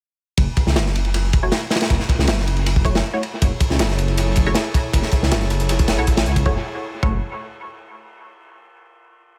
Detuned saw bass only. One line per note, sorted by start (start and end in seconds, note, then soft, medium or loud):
0.38 0.47 F#1 medium
0.67 0.77 C#2 loud
0.76 1.50 F#1 loud
1.90 1.99 F#1 medium
2.19 2.29 C#2 loud
2.28 3.02 F#1 loud
3.42 3.51 F#1 loud
3.71 3.81 C#2 loud
3.80 4.54 F#1 loud
4.94 5.02 F#1 medium
5.23 5.33 C#2 loud
5.32 5.98 F#1 loud
5.99 6.07 B1 medium
6.08 6.25 A1 loud
6.27 6.44 C#2 loud
6.46 6.57 F#1 loud
7.03 7.20 F#1 medium